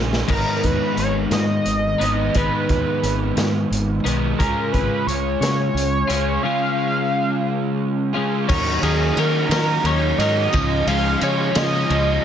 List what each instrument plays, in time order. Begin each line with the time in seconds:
Already playing: fingered electric bass A#1, clean electric guitar C#3, overdriven electric guitar G#3 C#4 D#4 G#4
0.13 snare
0.28 fingered electric bass G#1, overdriven electric guitar G#2 D#3 G#3, analog synth lead A#4, kick, crash
0.33 overdriven electric guitar B3 D#4 B4
0.63 fingered electric bass D#2, analog synth lead B4, kick, closed hi-hat
0.97 fingered electric bass G#1, analog synth lead C#5, closed hi-hat
1.30 fingered electric bass G#2, analog synth lead D#5, snare, closed hi-hat
1.66 fingered electric bass G#1, closed hi-hat
2.00 fingered electric bass G#1, overdriven electric guitar G#2 G#3 B3 D#4 B4, closed hi-hat
2.04 overdriven electric guitar D#3
2.35 fingered electric bass G#1, overdriven electric guitar G#2 D#3 G#3 B3 D#4 B4, analog synth lead B4, kick, closed hi-hat
2.69 fingered electric bass D#2, kick, closed hi-hat
3.03 fingered electric bass G#1, closed hi-hat
3.36 fingered electric bass G#2, snare, closed hi-hat
3.71 fingered electric bass G#1, closed hi-hat
4.05 fingered electric bass B1, overdriven electric guitar G#2 D#3 G#3 B3 D#4 B4, closed hi-hat
4.39 fingered electric bass C#2, overdriven electric guitar C#3 G#3 C#4 F4 G#4, analog synth lead A#4, kick, closed hi-hat
4.72 fingered electric bass G#1, analog synth lead B4, kick, closed hi-hat
5.06 fingered electric bass C#2, analog synth lead C#5, closed hi-hat
5.40 fingered electric bass C#3, analog synth lead C#5, snare, closed hi-hat
5.74 fingered electric bass C#2, closed hi-hat
6.08 fingered electric bass C#2, overdriven electric guitar C#3 G#3 C#4 F4 G#4, closed hi-hat
6.42 overdriven electric guitar C#3 G#3 C#4 F4 G#4, analog synth lead F5
8.13 overdriven electric guitar C#3 G#3 C#4 F4 G#4
8.48 fingered electric bass D#2, overdriven electric guitar D#3 A#3 D#4 F#4, clean electric guitar F#3 C#4 A#4, analog synth lead C#5, kick, crash, tambourine
8.82 fingered electric bass D#2, overdriven electric guitar D#3 A#3 D#4 F#4, clean electric guitar F#3 C#4 A#4, analog synth lead G#4, ride
9.16 fingered electric bass D#3, overdriven electric guitar D#3 A#3 D#4 F#4, clean electric guitar F#3 C#4 A#4, analog synth lead A#4, ride, tambourine
9.49 fingered electric bass D#3, overdriven electric guitar D#3 A#3 D#4 F#4, clean electric guitar F#3 C#4, snare, ride, tambourine
9.54 clean electric guitar A#4
9.83 fingered electric bass D#2, overdriven electric guitar D#3 A#3 D#4 F#4, clean electric guitar F#3 C#4 A#4, analog synth lead C#5, ride
10.18 fingered electric bass G#2, overdriven electric guitar D#3 A#3 D#4 F#4, clean electric guitar F#3 C#4 A#4, analog synth lead D#5, ride, tambourine
10.53 fingered electric bass C#2, overdriven electric guitar C#3 F3 G#3 C#4 F4, clean electric guitar D#4, kick, ride, tambourine
10.86 fingered electric bass C#2, overdriven electric guitar C#3 F3 G#3 C#4 F4, clean electric guitar D#4, analog synth lead F5, ride
11.21 fingered electric bass C#3, overdriven electric guitar C#3 F3 G#3 C#4 F4, clean electric guitar D#4, analog synth lead C#5, ride, tambourine
11.55 overdriven electric guitar C#3 F3 G#3 C#4 F4, fingered electric bass C#3, clean electric guitar D#4, analog synth lead D#5, snare, ride, tambourine
11.90 fingered electric bass C#2, overdriven electric guitar C#3 F3 G#3 C#4 F4, clean electric guitar D#4, ride